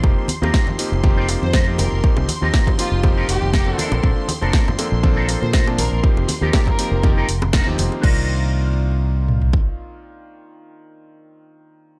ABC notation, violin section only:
X:1
M:4/4
L:1/16
Q:"Swing 16ths" 1/4=120
K:Cdor
V:1 name="Violin section"
z8 z3 c z2 B z | z6 F z3 G2 G2 z2 | z8 z3 c z2 B z | z3 G G B4 z6 z |
z16 | z16 |]